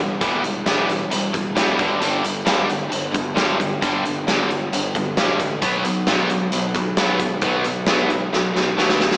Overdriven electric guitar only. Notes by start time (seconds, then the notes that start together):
0.00 E3 G3
0.21 E3 G3 B3
0.43 E3 G3
0.66 E3 G3 B3
0.89 E3 G3
1.10 E3 G3
1.33 E3 G3
1.55 E3 G3 B3
1.79 G2 D3 G3
2.00 G2 D3 G3
2.23 G2 D3
2.45 G2 D3 G3
2.67 G2 D3
2.90 G2 D3
3.13 G2 D3
3.35 G2 D3 G3
3.59 G2 D3
3.82 G2 D3 G3
4.04 G2 D3
4.27 G2 D3 G3
4.50 G2 D3
4.73 G2 D3
4.96 G2 D3
5.18 G2 D3 G3
5.41 G2 D3
5.62 B2 F#3 B3
5.84 B2 F#3
6.07 B2 F#3 B3
6.29 B2 F#3
6.53 B2 F#3
6.76 B2 F#3
6.98 B2 F#3 B3
7.21 B2 F#3
7.43 B2 F#3 B3
7.66 B2 F#3
7.87 B2 F#3 B3
8.10 B2 F#3
8.33 B2 F#3
8.55 B2 F#3
8.77 B2 F#3 B3
9.00 B2 F#3